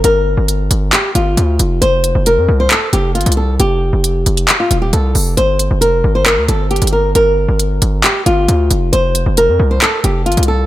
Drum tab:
HH |x-------x---x---x---x---x---x---|x---x---x-------x---x---xxxx----|x-------x---x-x-x---x---x---o---|x---x---x-------x---x---xxxx----|
CP |----------------x---------------|----------------x---------------|----------------x---------------|----------------x---------------|

HH |x-------x---x---x---x---x---x---|x---x---x-------x---x---xxxx----|
CP |----------------x---------------|----------------x---------------|